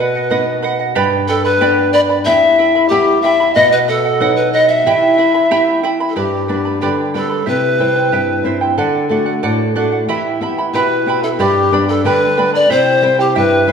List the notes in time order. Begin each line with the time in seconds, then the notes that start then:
Already playing: B2 B4
0.00 B4 D#5 F#5
0.15 D#5 F#5
0.30 B3 D#4 F#4 B4 D#5 F#5
0.63 B4 D#5 F#5
0.79 D#5 F#5
0.95 G2 G4 B4 D5 G5 B5
1.28 A4 B4 D5 G5 B5
1.44 B4 D5 B5
1.61 B3 D4 G4 B4 D5 G5 B5
1.92 B4 D5 G5 B5
2.09 B4 D5 B5
2.25 E2 E4 G4 E5 G5 B5
2.59 E4 E5 G5 B5
2.75 E4 E5 B5
2.88 G3 B3 E4 G4 E5 G5 B5
3.21 E4 E5 G5 B5
3.40 E4 E5 B5
3.54 B2 B4 D#5 F#5
3.72 B4
3.88 A4 B4 D#5 F#5
4.05 D#5 F#5
4.20 F#3 B3 D#4 B4 D#5 F#5
4.36 B4
4.52 B4 D#5 F#5
4.68 D#5 E5 F#5
4.86 E3 E4 G4 E5 G5 B5
5.18 E4 E5 G5 B5
5.34 E4 E5 B5
5.51 B3 E4 G4 E5 G5 B5
5.83 E4 E5 G5 B5
6.00 E4 E5 B5
6.09 A4
6.16 G2 G4 B4 D5 G5 B5
6.48 G3 B3 D4 B4 D5 G5 B5
6.65 B4 D5 B5
6.81 D3 G4 B4 D5 G5 B5
7.14 G3 B3 D4 A4 B4 D5 G5 B5
7.29 B4 D5 B5
7.46 C3 E4 G4 B4 E5 G5
7.79 G3 C4 E4 C5 E5 G5
7.96 E4 C5 G5
8.12 G2 E4 G4 E5 G5
8.43 G3 C4 E4 C5 E5 G5
8.61 E4 C5 G5
8.78 D3 A4 D5 F#5
9.09 A3 D4 F#4 A4 D5 F#5
9.26 D5 F#5
9.43 A2 A4 D5 F#5
9.75 A3 D4 F#4 A4 D5 F#5
9.92 D5 F#5
10.09 E3 E4 G4 E5 G5 B5
10.41 B3 E4 G4 E5 G5 B5
10.58 E4 E5 B5
10.73 B2 E4 G4 B4 E5 G5 B5
11.06 B3 E4 G4 E5 G5 B5
11.23 E4 A4 E5 B5
11.38 G2 G4 B4 D5 G5 B5
11.71 G3 B3 D4 B4 D5 G5 B5
11.88 A4 B4 D5 B5
12.04 D3 G4 B4 D5 G5 B5
12.37 G3 B3 D4 B4 D5 G5 B5
12.54 B4 D5 B5
12.70 C3 E4 G4 C5 E5 G5
13.02 G3 C4 E4 C5 E5 G5
13.19 E4 G4 C5 G5
13.35 G2 E4 G4 B4 E5 G5
13.67 G3 C4 E4 C5 E5 G5